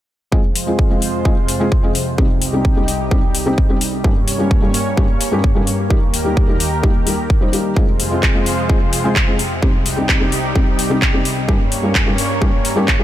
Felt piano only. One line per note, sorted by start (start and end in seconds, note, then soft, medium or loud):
0.32 0.38 G#3 medium
0.32 0.38 C4 medium
0.32 0.38 F4 medium
0.32 0.39 G#4 medium
0.67 0.87 G#3 medium
0.67 0.88 C4 medium
0.67 0.88 F4 medium
0.67 0.88 G#4 medium
0.90 0.96 G#3 medium
0.90 0.96 C4 medium
0.90 0.97 F4 medium
0.90 0.97 G#4 medium
1.25 1.31 G#3 medium
1.25 1.31 C4 medium
1.25 1.31 F4 medium
1.25 1.32 G#4 medium
1.60 1.66 G#3 medium
1.60 1.66 C4 medium
1.60 1.66 F4 medium
1.60 1.67 G#4 medium
1.83 1.89 G#3 medium
1.83 1.89 C4 medium
1.83 1.90 F4 medium
1.83 1.90 G#4 medium
2.18 2.24 C3 medium
2.18 2.24 G3 medium
2.18 2.24 C4 medium
2.18 2.25 D#4 medium
2.18 2.25 G4 medium
2.53 2.73 C3 medium
2.53 2.74 G3 medium
2.53 2.74 C4 medium
2.53 2.74 D#4 medium
2.53 2.74 G4 medium
2.76 2.82 C3 medium
2.76 2.82 G3 medium
2.76 2.82 C4 medium
2.76 2.83 D#4 medium
2.76 2.83 G4 medium
3.11 3.17 C3 medium
3.11 3.17 G3 medium
3.11 3.17 C4 medium
3.11 3.17 D#4 medium
3.11 3.18 G4 medium
3.46 3.52 C3 medium
3.46 3.52 G3 medium
3.46 3.52 C4 medium
3.46 3.52 D#4 medium
3.46 3.52 G4 loud
3.69 3.75 C3 medium
3.69 3.75 G3 medium
3.69 3.75 C4 medium
3.69 3.76 D#4 medium
3.69 3.76 G4 medium
4.04 4.10 G2 medium
4.04 4.10 G3 medium
4.04 4.10 A#3 medium
4.04 4.11 C#4 medium
4.04 4.11 G4 medium
4.39 4.59 G2 medium
4.39 4.60 G3 medium
4.39 4.60 A#3 medium
4.39 4.60 C#4 medium
4.39 4.60 G4 medium
4.62 4.68 G2 medium
4.62 4.68 G3 medium
4.62 4.69 A#3 medium
4.62 4.69 C#4 medium
4.62 4.69 G4 medium
4.97 5.03 G2 medium
4.97 5.03 G3 medium
4.97 5.03 A#3 medium
4.97 5.04 C#4 medium
4.97 5.04 G4 medium
5.32 5.38 G2 medium
5.32 5.38 G3 medium
5.32 5.38 A#3 medium
5.32 5.38 C#4 medium
5.32 5.39 G4 medium
5.55 5.61 G2 medium
5.55 5.61 G3 medium
5.55 5.62 A#3 medium
5.55 5.62 C#4 medium
5.55 5.62 G4 medium
5.90 5.96 G3 medium
5.90 5.96 A#3 medium
5.90 5.97 D#4 medium
5.90 5.97 G4 medium
6.25 6.45 G3 medium
6.25 6.46 A#3 medium
6.25 6.46 D#4 medium
6.25 6.46 G4 medium
6.48 6.54 G3 medium
6.48 6.54 A#3 medium
6.48 6.55 D#4 medium
6.48 6.55 G4 medium
6.83 6.89 G3 medium
6.83 6.89 A#3 medium
6.83 6.90 D#4 medium
6.83 6.90 G4 medium
7.06 7.12 G3 medium
7.06 7.13 A#3 medium
7.06 7.13 D#4 medium
7.06 7.13 G4 medium
7.41 7.47 G3 medium
7.41 7.47 A#3 medium
7.41 7.48 D#4 medium
7.41 7.48 C5 medium
7.53 7.73 G3 medium
7.53 7.74 A#3 medium
7.53 7.74 D#4 medium
7.53 7.74 G4 medium
7.76 7.82 G#3 medium
7.76 7.82 C4 medium
7.76 7.83 F4 medium
7.76 7.83 G#4 medium
8.11 8.32 G#3 medium
8.11 8.32 C4 medium
8.11 8.32 F4 medium
8.11 8.32 G#4 medium
8.34 8.40 G#3 medium
8.34 8.41 C4 medium
8.34 8.41 F4 medium
8.34 8.41 G#4 medium
8.69 8.75 G#3 medium
8.69 8.75 C4 medium
8.69 8.76 F4 medium
8.69 8.76 G#4 medium
9.04 9.10 G#3 medium
9.04 9.10 C4 medium
9.04 9.11 F4 medium
9.04 9.11 G#4 loud
9.27 9.33 G#3 medium
9.27 9.34 C4 medium
9.27 9.34 F4 medium
9.27 9.34 G#4 medium
9.62 9.68 C3 medium
9.62 9.68 G3 medium
9.62 9.69 C4 medium
9.62 9.69 D#4 medium
9.62 9.69 G4 medium
9.97 10.18 C3 medium
9.97 10.18 G3 medium
9.97 10.18 C4 medium
9.97 10.18 D#4 medium
9.97 10.18 G4 medium
10.20 10.26 C3 medium
10.20 10.27 G3 medium
10.20 10.27 C4 medium
10.20 10.27 D#4 medium
10.20 10.27 G4 medium
10.55 10.61 C3 medium
10.55 10.61 G3 medium
10.55 10.62 C4 medium
10.55 10.62 D#4 medium
10.55 10.62 G4 medium
10.90 10.96 C3 medium
10.90 10.96 G3 medium
10.90 10.96 C4 medium
10.90 10.97 D#4 medium
10.90 10.97 G4 loud
11.13 11.19 C3 medium
11.13 11.20 G3 medium
11.13 11.20 C4 medium
11.13 11.20 D#4 medium
11.13 11.20 G4 medium
11.48 11.54 G2 medium
11.48 11.54 G3 medium
11.48 11.55 A#3 medium
11.48 11.55 C#4 medium
11.48 11.55 G4 medium
11.83 12.04 G2 medium
11.83 12.04 G3 medium
11.83 12.04 A#3 medium
11.83 12.04 C#4 medium
11.83 12.04 G4 medium
12.06 12.12 G2 medium
12.06 12.13 G3 medium
12.06 12.13 A#3 medium
12.06 12.13 C#4 medium
12.06 12.13 G4 medium
12.41 12.47 G2 medium
12.41 12.47 G3 medium
12.41 12.48 A#3 medium
12.41 12.48 C#4 medium
12.41 12.48 G4 medium
12.76 12.82 G2 medium
12.76 12.82 G3 medium
12.76 12.82 A#3 medium
12.76 12.83 C#4 medium
12.76 12.83 G4 loud
12.99 13.04 G2 medium
12.99 13.04 G3 medium
12.99 13.04 A#3 medium
12.99 13.04 C#4 medium
12.99 13.04 G4 medium